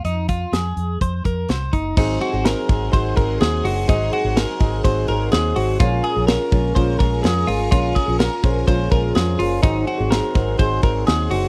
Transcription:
<<
  \new Staff \with { instrumentName = "String machine" } { \time 4/4 \key aes \mixolydian \tempo 4 = 125 r1 | <aes' ges'' c'''>1~ | <aes' ges'' c'''>1 | <bes' aes'' des'''>1~ |
<bes' aes'' des'''>1 | <aes' ges'' c'''>1 | }
  \new Staff \with { instrumentName = "Clean electric guitar" } { \time 4/4 \key aes \mixolydian ees'8 f'8 aes'4 c''8 bes'8 c''8 ees'8 | ees'8 ges'8 bes'4 c''8 bes'8 aes'8 ges'8 | ees'8 ges'8 bes'4 c''8 bes'8 aes'8 ges'8 | f'8 aes'8 bes'4 c''8 bes'8 aes'8 f'8 |
f'8 aes'8 bes'4 c''8 bes'8 aes'8 f'8 | ees'8 ges'8 bes'4 c''8 bes'8 aes'8 ges'8 | }
  \new Staff \with { instrumentName = "Synth keys" } { \time 4/4 \key aes \mixolydian r1 | <ees' ges' aes' c''>8 <ees' ges' aes' c''>8 <ees' ges' aes' c''>8 <ees' ges' aes' bes'>8 <ees' ges' aes' c''>8 <ees' ges' aes' c''>8 <ees' ges' aes' c''>8 <ees' ges' aes' c''>8 | <ees' ges' aes' c''>8 <ees' ges' aes' c''>8 <ees' ges' aes' c''>8 <ees' ges' aes' ees''>8 <ees' ges' aes' c''>8 <ees' ges' aes' c''>8 <ees' ges' aes' c''>8 <ees' ges' aes' c''>8 | <des' f' aes' bes'>8 <des' f' aes' bes'>8 <des' f' aes' bes'>8 <des' f' aes' bes'>8 <des' f' aes' bes'>8 <des' f' aes' bes'>8 <des' f' aes' bes'>8 <des' f' aes' bes'>8 |
<des' f' aes' bes'>8 <des' f' aes' bes'>8 <des' f' aes' bes'>8 <des' f' aes' c''>8 <des' f' aes' bes'>8 <des' f' aes' bes'>8 <des' f' aes' c''>8 <des' f' aes' bes'>8 | <ees' ges' aes' c''>8 <ees' ges' aes' c''>8 <ees' ges' aes' c''>8 <ees' ges' aes' c''>8 <ees' ges' aes' c''>8 <ees' ges' aes' c''>8 <ees' ges' aes' c''>8 <ees' ges' aes' c''>8 | }
  \new Staff \with { instrumentName = "Twelve-string acoustic guitar" } { \time 4/4 \key aes \mixolydian r1 | <aes, ees ges c' ges' aes'>8. <ges c' ges' aes'>8. <ges c' ges' aes'>8 <ges c' ges' aes'>8 <ges c' ges' aes'>4 <ges c' ges' aes'>8 | <aes, ees ges c' ges' aes'>8. <ges c' ges' aes'>8. <ges c' ges' aes'>8 <ges c' ges' aes'>8 <ges c' ges' aes'>4 <ges c' ges' aes'>8 | <bes, aes des' f' aes'>8. <des' f' aes'>8. <aes des' f' aes'>8 <aes des' f' aes'>8 <aes des' f' aes'>4 <aes des' f' aes'>8 |
<bes, aes des' f' aes'>8. <des' f' aes'>8. <aes des' f' aes'>8 <aes des' f' aes'>8 <aes des' f' aes'>4 <aes des' f' aes'>8 | <aes, ees ges c' ges' aes'>8. <ges c' ges' aes'>8. <ges c' ges' aes'>8 <ges c' ges' aes'>8 <ges c' ges' aes'>4 <ges c' ges' aes'>8 | }
  \new Staff \with { instrumentName = "Fingered electric bass" } { \clef bass \time 4/4 \key aes \mixolydian f,4 f,8 f,8 f,8 f,8 c,8 ges,,8 | aes,,8 r16 aes,,8 r16 aes,,8 aes,,8 aes,,8 ees,8 ges,,8 | aes,,8 r16 aes,,8 r16 aes,,8 aes,,8 aes,,8 ees,8 aes,,8 | bes,,8 r16 bes,,8 r16 bes,,8 bes,,8 bes,,8 f,8 aes,,8 |
bes,,8 r16 bes,,8 r16 bes,,8 bes,,8 bes,,8 f,8 ges,,8 | aes,,8 r16 aes,,8 r16 aes,,8 aes,,8 aes,,8 ees,8 ges,,8 | }
  \new DrumStaff \with { instrumentName = "Drums" } \drummode { \time 4/4 hh8 <hh bd>8 <hh sn>8 hh8 <hh bd>8 <hh bd>8 <hh sn>8 <hh bd>8 | <cymc bd>8 cymr8 <cymr sn>8 <bd cymr>8 <bd cymr>8 <bd cymr>8 <cymr sn>8 <hho cymr>8 | <hhp bd cymr>8 cymr8 <cymr sn>8 <bd cymr>8 <bd cymr>8 cymr8 <cymr sn>8 <hho cymr>8 | <hhp bd cymr>8 cymr8 <cymr sn>8 <bd cymr>8 <bd cymr>8 <bd cymr>8 <cymr sn>8 <hho cymr>8 |
<hhp bd cymr>8 <bd cymr>8 <cymr sn>8 <bd cymr>8 <bd cymr>8 <bd cymr>8 <cymr sn>8 <hho cymr>8 | <hhp bd cymr>8 cymr8 <cymr sn>8 <bd cymr>8 <bd cymr>8 <bd cymr>8 <cymr sn>8 <hho cymr>8 | }
>>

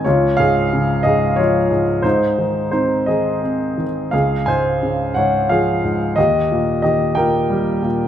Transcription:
<<
  \new Staff \with { instrumentName = "Grand piano" } { \time 6/8 \key des \major \tempo 4. = 59 <f' des''>8 <aes' f''>4 <aes' ees''>8 <f' des''>4 | <ees' c''>4 <ees' c''>8 <aes' ees''>4 r8 | <aes' f''>8 <c'' aes''>4 <des'' ges''>8 <aes' f''>4 | <g' ees''>4 <g' ees''>8 <bes' g''>4 r8 | }
  \new Staff \with { instrumentName = "Grand piano" } { \clef bass \time 6/8 \key des \major des,8 aes,8 des8 aes,8 f8 aes,8 | aes,8 ees8 c'8 ees8 c'8 ees8 | des,8 aes,8 des8 aes,8 f8 aes,8 | ees,8 bes,8 ees8 bes,8 g8 bes,8 | }
>>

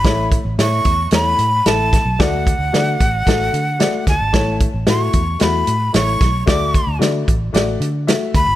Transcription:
<<
  \new Staff \with { instrumentName = "Flute" } { \time 4/4 \key a \major \tempo 4 = 112 b''8 r8 cis'''4 b''4 a''4 | fis''2.~ fis''8 a''8~ | a''8 r8 cis'''4 b''4 cis'''4 | d'''4 r2 r8 b''8 | }
  \new Staff \with { instrumentName = "Upright piano" } { \time 4/4 \key a \major <a e' cis''>8 r8 <a e' cis''>8 r8 <a e' cis''>8 r8 <a e' a'>8 r8 | <a fis' d''>8 r8 <a fis' d''>8 r8 <a fis' a'>8 r8 <a fis' d''>8 r8 | <a e' cis''>8 r8 <a e' fis'>8 r8 <a e' fis'>8 r8 <a e' cis''>8 r8 | <a fis' d''>8 r8 <a fis' d''>8 r8 <a fis' d''>8 r8 <a fis' e''>8 r8 | }
  \new Staff \with { instrumentName = "Fingered electric bass" } { \clef bass \time 4/4 \key a \major a,,8. a,,16 a,8 e,8 e,8 a,8 a,,8. b,,16 | r8. d,16 d8 a,,8 a,,8 d8. r16 d,16 gis,,16 | a,,8. a,,16 a,8 e,8 e,8 a,8 a,,8 b,,8 | d,8. d,16 d8 a,,8 a,,8 d8. r16 d,16 gis,,16 | }
  \new DrumStaff \with { instrumentName = "Drums" } \drummode { \time 4/4 <hh bd sn>8 <hh bd>8 <hh sn>8 <hh bd>8 <hh sn>8 hh8 <hh sn>8 <hh bd sn>8 | <hh bd sn>8 <hh bd>8 <hh sn>8 <hh bd>8 <hh bd sn>8 hh8 <hh sn>8 <hh bd sn>8 | <hh bd sn>8 <hh bd>8 <hh sn>8 <hh bd>8 <hh sn>8 hh8 <hh sn>8 <hh bd sn>8 | <hh bd sn>8 <hh bd>8 <hh sn>8 <hh bd>8 <hh sn>8 hh8 <hh sn>8 <hh bd>8 | }
>>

